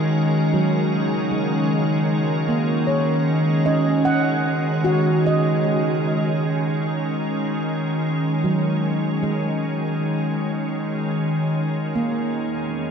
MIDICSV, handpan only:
0, 0, Header, 1, 2, 480
1, 0, Start_track
1, 0, Tempo, 780234
1, 1772, Time_signature, 4, 2, 24, 8
1, 2257, Tempo, 796813
1, 5137, Tempo, 777202
1, 7891, End_track
2, 0, Start_track
2, 0, Title_t, "Handpan"
2, 0, Program_c, 0, 114
2, 330, Note_on_c, 0, 54, 59
2, 785, Note_off_c, 0, 54, 0
2, 809, Note_on_c, 0, 56, 51
2, 1528, Note_on_c, 0, 58, 59
2, 1766, Note_on_c, 0, 73, 65
2, 2250, Note_on_c, 0, 75, 71
2, 2251, Note_on_c, 0, 61, 65
2, 2352, Note_off_c, 0, 58, 0
2, 2487, Note_on_c, 0, 78, 89
2, 2601, Note_off_c, 0, 56, 0
2, 2707, Note_off_c, 0, 75, 0
2, 2965, Note_on_c, 0, 66, 88
2, 3219, Note_on_c, 0, 75, 76
2, 3315, Note_off_c, 0, 78, 0
2, 3570, Note_off_c, 0, 73, 0
2, 4050, Note_off_c, 0, 61, 0
2, 4762, Note_off_c, 0, 66, 0
2, 5005, Note_off_c, 0, 75, 0
2, 5132, Note_on_c, 0, 54, 61
2, 5595, Note_off_c, 0, 54, 0
2, 5618, Note_on_c, 0, 56, 60
2, 7301, Note_on_c, 0, 58, 67
2, 7406, Note_off_c, 0, 56, 0
2, 7891, Note_off_c, 0, 58, 0
2, 7891, End_track
0, 0, End_of_file